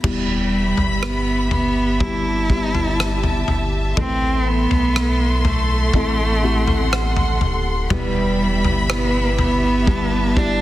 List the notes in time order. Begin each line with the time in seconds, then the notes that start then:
0.03 E1 B2 G3 B3 E4 G4 E5 B5, kick, floor tom, crash
0.77 G1, floor tom
1.02 B3, cross-stick
1.51 B3, floor tom
2.00 G3 B3 E4 G4 A5, kick, floor tom
2.49 G3 B3 E4 G4, kick
2.75 floor tom
3.00 cross-stick
3.24 floor tom
3.48 G1, floor tom
3.97 A1 A2 E3 A3 C4 E4 A4 C6, kick, floor tom
4.48 B3
4.71 B1, floor tom
4.96 cross-stick
5.45 A3, floor tom
5.93 A1 A3 C4 E4 A4 F#5, kick, floor tom
6.43 A3 C4 E4 G4
6.67 floor tom
6.93 cross-stick
7.17 floor tom
7.41 D1, floor tom
7.90 E1 E2 B2 E3 G3 B3 E4 G4 E5 B5, kick, floor tom
8.39 E3 G3 B3 E4
8.64 G1 E3 G3 B3 E4, floor tom
8.89 E2 B2 E3 G3 B3 E4, cross-stick
9.39 B3, floor tom
9.63 E3 G3 B3 E4
9.86 G3 B3 E4 G4 A5, kick, floor tom
10.12 E3 G3 B3 E4
10.36 E3 G3 B3 D4 E4 G4, kick